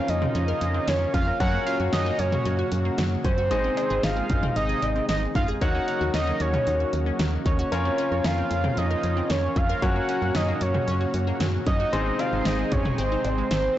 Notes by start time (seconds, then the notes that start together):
Already playing: C#3 F3 A#3 C#4 F4 A#4 C#5 F5
0.08 F2 D#5, closed hi-hat
0.22 C4, mid tom
0.35 F2 C#4, closed hi-hat
0.48 A#4
0.61 F2, closed hi-hat
0.74 C4
0.88 F2 A#3 C#5, snare, closed hi-hat
1.14 F2 C#4 F5, kick, closed hi-hat
1.27 A#4
1.40 F#2 A#2 C#3 F#3 C#4 F#4 A#4 C#5 F#5, kick, closed hi-hat
1.53 A#3
1.66 C#4 F5, closed hi-hat
1.80 F#2 F#4
1.93 F#2 C#4 D#5, snare, closed hi-hat
2.06 A#3
2.19 F#2 C#5, closed hi-hat
2.32 A#3, mid tom
2.45 F#2 C#4, closed hi-hat
2.59 F#4
2.72 F#2, closed hi-hat
2.85 A#3
2.98 F#2 F#3, snare, closed hi-hat
3.24 F#2 C#4 C5, kick, closed hi-hat
3.38 F#4
3.51 G#1 C3 D#3 G#3 D#4 G#4 C5 D#5, closed hi-hat
3.64 C4
3.77 D#4, closed hi-hat, cowbell
3.90 G#1 G#4
4.03 G#1 D#4 F5, snare, closed hi-hat
4.17 C4
4.30 G#1, kick, closed hi-hat, mid tom
4.43 C4, mid tom
4.56 G#1 D#4 D#5, closed hi-hat
4.69 G#4
4.82 G#1, closed hi-hat, cowbell
4.96 C4
5.09 G#1 G#3 D#5, snare, closed hi-hat
5.35 G#1 D#4 F5, kick, closed hi-hat, mid tom
5.48 G#4
5.61 D#2 C#3 F#3 A#3 D#4 F#4 A#4 C#5 F#5, kick, closed hi-hat
5.75 C#4
5.88 D#4, closed hi-hat
6.01 D#2 F#4
6.14 D#2 D#4 D#5, snare, closed hi-hat
6.27 C#4
6.40 D#2 C#5, closed hi-hat
6.54 C#4, mid tom
6.67 D#2 D#4, closed hi-hat
6.80 F#4
6.93 D#2, closed hi-hat
7.06 C#4
7.19 D#2 F#3, snare, closed hi-hat
7.46 D#2 D#4 C#5, kick, closed hi-hat
7.59 F#4
7.72 F2 C#3 F3 A#3 C#4 F4 A#4 C#5, closed hi-hat
7.85 C4
7.98 C#4, closed hi-hat
8.12 F2 A#4
8.24 F2 C#4 F5, snare, closed hi-hat
8.38 C4
8.51 F2, closed hi-hat
8.64 C4, mid tom
8.77 F2 C#4 D#5, closed hi-hat
8.91 A#4
9.03 F2, closed hi-hat
9.17 C4
9.30 F2 A#3 C#5, snare, closed hi-hat
9.56 F2 C#4 F5, kick, closed hi-hat
9.69 A#4
9.82 F#2 A#2 C#3 F#3 C#4 F#4 A#4 C#5 F#5, kick, closed hi-hat
9.96 A#3
10.09 C#4, closed hi-hat
10.22 F#2 F#4
10.35 F#2 C#4 D#5, snare, closed hi-hat
10.48 A#3
10.61 F#2 C#5, closed hi-hat
10.74 A#3, mid tom
10.88 F#2 C#4, closed hi-hat
11.01 F#4
11.14 F#2, closed hi-hat
11.27 A#3
11.40 F#2 F#3, snare, closed hi-hat
11.67 F#2 C#4 D#5, kick, closed hi-hat
11.80 F#4
11.93 G#1 C3 D#3 G#3 C4 D#4 G#4 C5, closed hi-hat
12.06 G#3
12.19 C4 F5, closed hi-hat, cowbell
12.33 G#1 D#4
12.45 G#1 C4 D#5, snare, closed hi-hat
12.59 G#3
12.72 G#1 C#5, kick, closed hi-hat, mid tom
12.85 G#3, mid tom
12.98 G#1 C4 C5, closed hi-hat
13.12 D#4
13.25 G#1, closed hi-hat, cowbell
13.38 G#3
13.51 G#1 D#3 C5, snare, closed hi-hat